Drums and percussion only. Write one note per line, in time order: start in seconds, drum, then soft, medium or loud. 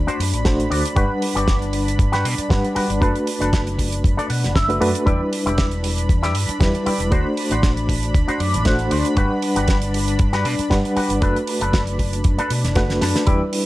0.08 closed hi-hat soft
0.20 open hi-hat loud
0.34 closed hi-hat medium
0.45 kick loud
0.45 snare loud
0.45 closed hi-hat medium
0.60 closed hi-hat medium
0.72 open hi-hat loud
0.85 closed hi-hat medium
0.96 kick loud
0.96 closed hi-hat medium
1.22 open hi-hat loud
1.37 closed hi-hat medium
1.48 kick loud
1.48 snare loud
1.48 closed hi-hat medium
1.62 closed hi-hat soft
1.73 open hi-hat medium
1.88 closed hi-hat medium
1.99 kick loud
1.99 closed hi-hat medium
2.13 snare soft
2.13 closed hi-hat soft
2.25 open hi-hat loud
2.38 closed hi-hat medium
2.50 kick loud
2.50 snare loud
2.50 closed hi-hat medium
2.65 closed hi-hat soft
2.76 open hi-hat loud
2.90 closed hi-hat medium
3.02 kick loud
3.02 closed hi-hat medium
3.15 closed hi-hat soft
3.27 open hi-hat loud
3.42 closed hi-hat medium
3.53 kick loud
3.53 snare loud
3.53 closed hi-hat medium
3.67 closed hi-hat medium
3.79 kick medium
3.79 open hi-hat loud
3.92 closed hi-hat medium
4.04 kick loud
4.04 closed hi-hat medium
4.19 closed hi-hat soft
4.30 open hi-hat loud
4.44 snare soft
4.44 closed hi-hat medium
4.56 kick loud
4.56 snare loud
4.56 closed hi-hat medium
4.70 closed hi-hat soft
4.82 open hi-hat loud
4.95 closed hi-hat medium
5.07 kick loud
5.07 closed hi-hat medium
5.33 open hi-hat loud
5.47 closed hi-hat medium
5.58 kick loud
5.58 snare loud
5.58 closed hi-hat medium
5.71 closed hi-hat soft
5.84 open hi-hat loud
5.98 closed hi-hat medium
6.09 kick loud
6.09 closed hi-hat medium
6.23 snare soft
6.23 closed hi-hat medium
6.35 open hi-hat loud
6.49 closed hi-hat medium
6.61 kick loud
6.61 snare loud
6.61 closed hi-hat medium
6.75 closed hi-hat soft
6.86 open hi-hat loud
7.00 closed hi-hat medium
7.12 kick loud
7.12 closed hi-hat medium
7.37 open hi-hat loud
7.51 closed hi-hat medium
7.63 kick loud
7.63 snare loud
7.63 closed hi-hat medium
7.77 closed hi-hat soft
7.89 kick medium
7.89 open hi-hat loud
8.03 closed hi-hat medium
8.14 kick loud
8.14 closed hi-hat medium
8.28 closed hi-hat soft
8.40 open hi-hat medium
8.54 closed hi-hat medium
8.65 kick loud
8.65 snare loud
8.65 closed hi-hat medium
8.79 closed hi-hat soft
8.91 open hi-hat loud
9.05 closed hi-hat medium
9.17 kick loud
9.17 closed hi-hat medium
9.42 open hi-hat medium
9.56 closed hi-hat medium
9.68 kick loud
9.68 snare loud
9.68 closed hi-hat medium
9.82 closed hi-hat medium
9.94 open hi-hat loud
10.08 closed hi-hat medium
10.19 kick loud
10.19 closed hi-hat medium
10.33 snare soft
10.33 closed hi-hat medium
10.45 open hi-hat medium
10.59 closed hi-hat medium
10.71 kick loud
10.71 snare loud
10.71 closed hi-hat medium
10.85 closed hi-hat medium
10.97 open hi-hat medium
11.10 closed hi-hat medium
11.22 kick loud
11.22 closed hi-hat medium
11.36 closed hi-hat medium
11.47 open hi-hat loud
11.61 closed hi-hat medium
11.73 kick loud
11.73 snare loud
11.73 closed hi-hat medium
11.87 closed hi-hat medium
11.99 kick medium
11.99 open hi-hat medium
12.13 closed hi-hat medium
12.24 kick loud
12.24 closed hi-hat medium
12.39 closed hi-hat medium
12.50 open hi-hat loud
12.64 snare soft
12.64 closed hi-hat medium
12.75 kick loud
12.75 snare medium
12.75 closed hi-hat medium
12.90 snare medium
12.90 closed hi-hat medium
13.01 snare medium
13.01 open hi-hat loud
13.16 snare medium
13.16 closed hi-hat medium
13.27 kick loud
13.27 closed hi-hat medium
13.53 open hi-hat loud